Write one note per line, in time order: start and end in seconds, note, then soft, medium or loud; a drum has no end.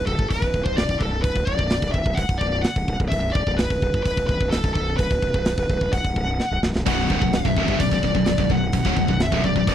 0.06 0.18 B0 loud
0.06 0.29 A4 medium
0.06 kick medium
0.19 0.30 G1 loud
0.19 kick medium
0.30 0.41 B0 medium
0.30 0.64 B4 medium
0.30 kick medium
0.30 open hi-hat medium
0.42 0.53 B0 medium
0.42 kick medium
0.54 0.65 B0 medium
0.54 kick medium
0.65 0.77 B0 medium
0.65 0.77 C5 medium
0.65 kick medium
0.76 0.88 B0 medium
0.76 1.01 D5 medium
0.76 snare loud
0.76 open hi-hat medium
0.89 1.00 B0 medium
0.89 kick medium
0.99 1.23 B0 medium
0.99 1.22 A4 medium
0.99 kick medium
1.22 1.35 B0 medium
1.22 1.48 B4 medium
1.22 kick medium
1.22 open hi-hat soft
1.36 1.46 D1 medium
1.36 kick medium
1.45 1.58 B0 medium
1.45 1.92 D5 medium
1.45 kick medium
1.59 1.81 B0 medium
1.59 kick medium
1.70 snare loud
1.70 open hi-hat medium
1.82 1.93 B0 medium
1.82 kick loud
1.92 2.05 B0 medium
1.92 2.18 E5 loud
1.92 kick medium
2.05 2.17 B0 medium
2.05 kick medium
2.15 2.28 C1 medium
2.15 2.38 F#5 loud
2.15 kick medium
2.15 open hi-hat medium
2.29 2.40 B0 medium
2.29 kick medium
2.38 2.63 B0 medium
2.38 2.61 D5 medium
2.38 kick medium
2.61 2.96 F#5 medium
2.61 snare loud
2.61 open hi-hat medium
2.76 2.87 B0 medium
2.76 kick medium
2.88 2.99 B0 medium
2.88 kick medium
3.00 3.11 B0 medium
3.00 kick medium
3.08 3.34 B0 medium
3.08 3.32 E5 medium
3.08 kick medium
3.08 open hi-hat medium
3.33 3.46 C1 medium
3.33 3.58 D5 medium
3.33 kick loud
3.47 3.69 B0 medium
3.47 kick medium
3.57 4.02 B4 medium
3.57 snare loud
3.57 open hi-hat medium
3.70 3.81 B0 medium
3.70 kick medium
3.82 3.93 B0 medium
3.82 kick medium
3.94 4.05 G1 medium
3.94 kick medium
4.03 4.16 B0 medium
4.03 4.26 B4 medium
4.03 kick medium
4.03 open hi-hat medium
4.17 4.28 B0 medium
4.17 kick medium
4.27 4.40 B0 medium
4.27 4.50 B4 medium
4.27 kick medium
4.40 4.51 B0 medium
4.40 kick medium
4.51 4.63 B0 medium
4.51 4.73 A4 medium
4.51 snare loud
4.51 open hi-hat medium
4.63 4.75 B0 medium
4.63 kick medium
4.74 4.97 B0 medium
4.74 4.96 A4 medium
4.74 kick medium
4.97 5.10 B0 medium
4.97 5.95 B4 medium
4.97 kick medium
4.97 open hi-hat medium
5.10 5.22 D1 medium
5.10 kick medium
5.22 5.33 B0 medium
5.22 kick medium
5.34 5.56 B0 medium
5.34 kick medium
5.45 snare loud
5.45 open hi-hat medium
5.58 5.69 B0 medium
5.58 kick loud
5.69 5.80 B0 medium
5.69 kick medium
5.81 5.92 B0 medium
5.81 kick medium
5.93 6.04 C1 medium
5.93 6.59 F#5 medium
5.93 kick loud
5.93 open hi-hat medium
6.04 6.15 B0 medium
6.04 kick medium
6.16 6.38 B0 medium
6.16 kick medium
6.40 snare medium
6.51 6.62 B0 medium
6.62 6.74 B0 medium
6.62 snare medium
6.75 6.86 B0 medium
6.75 snare medium
6.86 7.08 B0 medium
6.86 7.09 B1 medium
6.86 7.10 F#2 medium
6.86 7.10 B2 loud
6.86 7.35 F#5 loud
6.86 kick loud
6.86 open hi-hat medium
6.86 crash medium
7.10 7.21 C1 medium
7.10 7.21 C2 medium
7.10 7.22 G2 loud
7.10 kick loud
7.21 7.43 B0 medium
7.21 7.41 B1 medium
7.21 7.41 F#2 medium
7.21 kick medium
7.33 7.79 E5 medium
7.33 snare loud
7.33 open hi-hat medium
7.45 7.56 B0 medium
7.45 7.55 B1 medium
7.45 7.56 F#2 medium
7.45 kick medium
7.57 7.67 B0 medium
7.57 7.68 B1 medium
7.57 7.68 F#2 loud
7.57 kick medium
7.68 7.79 G1 medium
7.68 7.79 G2 medium
7.68 7.80 D3 medium
7.68 kick medium
7.80 7.91 B0 medium
7.80 7.91 B1 medium
7.80 7.91 F#2 medium
7.80 8.52 D5 medium
7.80 kick loud
7.80 open hi-hat medium
7.91 8.02 B0 medium
7.91 8.02 B1 medium
7.91 8.03 F#2 medium
7.91 kick medium
8.03 8.14 B0 medium
8.03 8.14 B1 medium
8.03 8.14 F#2 medium
8.03 kick medium
8.15 8.26 B0 medium
8.15 8.25 B1 medium
8.15 8.25 F#2 medium
8.15 kick medium
8.26 8.37 B0 medium
8.26 8.37 B1 medium
8.26 8.37 F#2 medium
8.26 snare loud
8.26 open hi-hat medium
8.38 8.49 B0 medium
8.38 8.49 B1 medium
8.38 8.49 F#2 medium
8.38 kick medium
8.49 8.72 B0 medium
8.49 8.69 B1 medium
8.49 8.69 F#2 medium
8.49 9.23 F#5 medium
8.49 kick medium
8.72 8.84 B0 medium
8.72 8.84 B1 medium
8.72 8.85 F#2 medium
8.72 kick medium
8.72 open hi-hat medium
8.85 8.96 D1 medium
8.85 8.95 D2 medium
8.85 8.96 A2 loud
8.85 kick medium
8.96 9.08 B0 medium
8.96 9.06 B1 medium
8.96 9.07 F#2 medium
8.96 kick medium
9.07 9.30 B0 medium
9.07 9.27 B1 medium
9.07 9.27 F#2 medium
9.07 kick medium
9.20 9.45 E5 medium
9.20 snare loud
9.20 open hi-hat medium
9.32 9.43 B0 medium
9.32 9.43 B1 loud
9.32 9.43 F#2 loud
9.32 kick loud
9.44 9.55 B0 medium
9.44 9.55 B1 medium
9.44 9.56 F#2 medium
9.44 9.67 D5 medium
9.44 kick medium
9.56 9.67 B0 medium
9.56 9.68 B1 medium
9.56 9.68 F#2 medium
9.56 kick medium
9.67 9.75 C1 medium
9.67 9.75 C2 medium
9.67 9.75 G2 medium
9.67 9.75 D5 medium
9.67 kick loud
9.67 open hi-hat medium